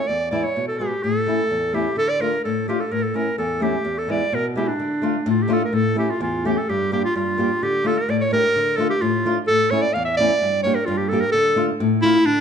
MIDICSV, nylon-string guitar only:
0, 0, Header, 1, 2, 480
1, 0, Start_track
1, 0, Key_signature, -1, "minor"
1, 0, Tempo, 471698
1, 83, Time_signature, 2, 2, 24, 8
1, 6323, Tempo, 465477
1, 12709, End_track
2, 0, Start_track
2, 0, Title_t, "Nylon-string guitar"
2, 0, Program_c, 0, 24
2, 94, Note_on_c, 0, 40, 60
2, 316, Note_on_c, 0, 56, 55
2, 322, Note_on_c, 0, 59, 50
2, 332, Note_on_c, 0, 64, 68
2, 441, Note_off_c, 0, 56, 0
2, 444, Note_off_c, 0, 59, 0
2, 449, Note_off_c, 0, 40, 0
2, 449, Note_off_c, 0, 64, 0
2, 573, Note_on_c, 0, 47, 59
2, 808, Note_on_c, 0, 56, 55
2, 818, Note_on_c, 0, 59, 44
2, 825, Note_on_c, 0, 66, 66
2, 929, Note_off_c, 0, 47, 0
2, 929, Note_off_c, 0, 56, 0
2, 934, Note_off_c, 0, 59, 0
2, 937, Note_off_c, 0, 66, 0
2, 1057, Note_on_c, 0, 45, 63
2, 1285, Note_on_c, 0, 57, 52
2, 1293, Note_on_c, 0, 61, 49
2, 1307, Note_on_c, 0, 64, 54
2, 1409, Note_off_c, 0, 57, 0
2, 1413, Note_off_c, 0, 45, 0
2, 1413, Note_off_c, 0, 61, 0
2, 1420, Note_off_c, 0, 64, 0
2, 1531, Note_on_c, 0, 40, 67
2, 1757, Note_on_c, 0, 57, 55
2, 1768, Note_on_c, 0, 61, 49
2, 1774, Note_on_c, 0, 64, 62
2, 1886, Note_off_c, 0, 57, 0
2, 1890, Note_off_c, 0, 40, 0
2, 1891, Note_off_c, 0, 61, 0
2, 1894, Note_off_c, 0, 64, 0
2, 2001, Note_on_c, 0, 50, 56
2, 2238, Note_on_c, 0, 57, 52
2, 2250, Note_on_c, 0, 62, 46
2, 2255, Note_on_c, 0, 65, 61
2, 2365, Note_off_c, 0, 50, 0
2, 2367, Note_off_c, 0, 57, 0
2, 2373, Note_off_c, 0, 62, 0
2, 2375, Note_off_c, 0, 65, 0
2, 2496, Note_on_c, 0, 45, 67
2, 2725, Note_on_c, 0, 57, 59
2, 2736, Note_on_c, 0, 62, 54
2, 2742, Note_on_c, 0, 65, 62
2, 2850, Note_off_c, 0, 57, 0
2, 2854, Note_off_c, 0, 45, 0
2, 2856, Note_off_c, 0, 62, 0
2, 2859, Note_off_c, 0, 65, 0
2, 2966, Note_on_c, 0, 45, 62
2, 3197, Note_on_c, 0, 57, 57
2, 3205, Note_on_c, 0, 61, 49
2, 3213, Note_on_c, 0, 64, 59
2, 3326, Note_off_c, 0, 57, 0
2, 3328, Note_off_c, 0, 45, 0
2, 3331, Note_off_c, 0, 61, 0
2, 3334, Note_off_c, 0, 64, 0
2, 3443, Note_on_c, 0, 40, 70
2, 3664, Note_on_c, 0, 57, 59
2, 3680, Note_on_c, 0, 61, 54
2, 3685, Note_on_c, 0, 64, 71
2, 3800, Note_off_c, 0, 57, 0
2, 3806, Note_off_c, 0, 40, 0
2, 3808, Note_off_c, 0, 61, 0
2, 3810, Note_off_c, 0, 64, 0
2, 3913, Note_on_c, 0, 40, 63
2, 4151, Note_on_c, 0, 56, 50
2, 4159, Note_on_c, 0, 59, 57
2, 4171, Note_on_c, 0, 64, 61
2, 4280, Note_off_c, 0, 40, 0
2, 4283, Note_off_c, 0, 56, 0
2, 4287, Note_off_c, 0, 59, 0
2, 4293, Note_off_c, 0, 64, 0
2, 4400, Note_on_c, 0, 47, 66
2, 4636, Note_on_c, 0, 56, 57
2, 4639, Note_on_c, 0, 59, 51
2, 4652, Note_on_c, 0, 64, 65
2, 4763, Note_off_c, 0, 47, 0
2, 4765, Note_off_c, 0, 56, 0
2, 4765, Note_off_c, 0, 59, 0
2, 4772, Note_off_c, 0, 64, 0
2, 4878, Note_on_c, 0, 50, 60
2, 5105, Note_on_c, 0, 57, 56
2, 5113, Note_on_c, 0, 62, 54
2, 5120, Note_on_c, 0, 65, 72
2, 5238, Note_off_c, 0, 57, 0
2, 5240, Note_off_c, 0, 50, 0
2, 5242, Note_off_c, 0, 62, 0
2, 5245, Note_off_c, 0, 65, 0
2, 5353, Note_on_c, 0, 45, 94
2, 5575, Note_on_c, 0, 57, 74
2, 5582, Note_on_c, 0, 62, 76
2, 5595, Note_on_c, 0, 65, 83
2, 5711, Note_off_c, 0, 57, 0
2, 5715, Note_off_c, 0, 62, 0
2, 5716, Note_off_c, 0, 45, 0
2, 5721, Note_off_c, 0, 65, 0
2, 5828, Note_on_c, 0, 45, 67
2, 6058, Note_on_c, 0, 57, 55
2, 6067, Note_on_c, 0, 61, 57
2, 6075, Note_on_c, 0, 64, 61
2, 6191, Note_off_c, 0, 57, 0
2, 6192, Note_off_c, 0, 45, 0
2, 6196, Note_off_c, 0, 61, 0
2, 6200, Note_off_c, 0, 64, 0
2, 6314, Note_on_c, 0, 40, 74
2, 6569, Note_on_c, 0, 57, 69
2, 6578, Note_on_c, 0, 61, 60
2, 6584, Note_on_c, 0, 67, 66
2, 6678, Note_off_c, 0, 40, 0
2, 6688, Note_off_c, 0, 57, 0
2, 6693, Note_off_c, 0, 61, 0
2, 6696, Note_off_c, 0, 67, 0
2, 6819, Note_on_c, 0, 43, 68
2, 7048, Note_on_c, 0, 58, 69
2, 7055, Note_on_c, 0, 62, 58
2, 7063, Note_on_c, 0, 67, 68
2, 7169, Note_off_c, 0, 58, 0
2, 7172, Note_off_c, 0, 43, 0
2, 7172, Note_off_c, 0, 62, 0
2, 7176, Note_off_c, 0, 67, 0
2, 7294, Note_on_c, 0, 43, 74
2, 7523, Note_on_c, 0, 58, 61
2, 7529, Note_on_c, 0, 62, 59
2, 7540, Note_on_c, 0, 67, 64
2, 7647, Note_off_c, 0, 58, 0
2, 7649, Note_off_c, 0, 62, 0
2, 7650, Note_off_c, 0, 43, 0
2, 7656, Note_off_c, 0, 67, 0
2, 7780, Note_on_c, 0, 50, 62
2, 7997, Note_on_c, 0, 57, 63
2, 8007, Note_on_c, 0, 62, 58
2, 8013, Note_on_c, 0, 65, 58
2, 8125, Note_off_c, 0, 57, 0
2, 8130, Note_off_c, 0, 62, 0
2, 8133, Note_off_c, 0, 65, 0
2, 8134, Note_off_c, 0, 50, 0
2, 8254, Note_on_c, 0, 45, 77
2, 8491, Note_on_c, 0, 57, 62
2, 8501, Note_on_c, 0, 62, 59
2, 8510, Note_on_c, 0, 67, 71
2, 8611, Note_off_c, 0, 45, 0
2, 8612, Note_off_c, 0, 57, 0
2, 8617, Note_off_c, 0, 62, 0
2, 8622, Note_off_c, 0, 67, 0
2, 8741, Note_on_c, 0, 50, 72
2, 8964, Note_on_c, 0, 57, 57
2, 8969, Note_on_c, 0, 62, 58
2, 8985, Note_on_c, 0, 65, 62
2, 9089, Note_off_c, 0, 57, 0
2, 9092, Note_off_c, 0, 62, 0
2, 9096, Note_off_c, 0, 50, 0
2, 9100, Note_off_c, 0, 65, 0
2, 9215, Note_on_c, 0, 45, 70
2, 9456, Note_on_c, 0, 57, 53
2, 9463, Note_on_c, 0, 62, 53
2, 9469, Note_on_c, 0, 65, 75
2, 9572, Note_off_c, 0, 45, 0
2, 9576, Note_off_c, 0, 57, 0
2, 9579, Note_off_c, 0, 62, 0
2, 9581, Note_off_c, 0, 65, 0
2, 9700, Note_on_c, 0, 45, 67
2, 9928, Note_on_c, 0, 57, 56
2, 9938, Note_on_c, 0, 61, 53
2, 9948, Note_on_c, 0, 64, 64
2, 10052, Note_off_c, 0, 57, 0
2, 10055, Note_off_c, 0, 45, 0
2, 10057, Note_off_c, 0, 61, 0
2, 10061, Note_off_c, 0, 64, 0
2, 10181, Note_on_c, 0, 40, 74
2, 10422, Note_on_c, 0, 57, 69
2, 10430, Note_on_c, 0, 61, 59
2, 10438, Note_on_c, 0, 64, 69
2, 10535, Note_off_c, 0, 40, 0
2, 10538, Note_off_c, 0, 57, 0
2, 10542, Note_off_c, 0, 61, 0
2, 10546, Note_off_c, 0, 64, 0
2, 10660, Note_on_c, 0, 43, 76
2, 10894, Note_on_c, 0, 58, 57
2, 10898, Note_on_c, 0, 62, 58
2, 10917, Note_on_c, 0, 67, 58
2, 11014, Note_off_c, 0, 43, 0
2, 11014, Note_off_c, 0, 58, 0
2, 11016, Note_off_c, 0, 62, 0
2, 11025, Note_off_c, 0, 67, 0
2, 11133, Note_on_c, 0, 43, 75
2, 11379, Note_on_c, 0, 58, 63
2, 11389, Note_on_c, 0, 62, 58
2, 11397, Note_on_c, 0, 67, 70
2, 11489, Note_off_c, 0, 43, 0
2, 11496, Note_off_c, 0, 58, 0
2, 11500, Note_off_c, 0, 62, 0
2, 11504, Note_off_c, 0, 67, 0
2, 11609, Note_on_c, 0, 50, 70
2, 11827, Note_on_c, 0, 57, 56
2, 11838, Note_on_c, 0, 62, 60
2, 11846, Note_on_c, 0, 65, 66
2, 11958, Note_off_c, 0, 57, 0
2, 11964, Note_off_c, 0, 62, 0
2, 11966, Note_off_c, 0, 50, 0
2, 11968, Note_off_c, 0, 65, 0
2, 12086, Note_on_c, 0, 45, 85
2, 12325, Note_on_c, 0, 57, 60
2, 12334, Note_on_c, 0, 62, 55
2, 12339, Note_on_c, 0, 65, 67
2, 12443, Note_off_c, 0, 45, 0
2, 12447, Note_off_c, 0, 57, 0
2, 12449, Note_off_c, 0, 62, 0
2, 12453, Note_off_c, 0, 65, 0
2, 12571, Note_on_c, 0, 50, 60
2, 12709, Note_off_c, 0, 50, 0
2, 12709, End_track
0, 0, End_of_file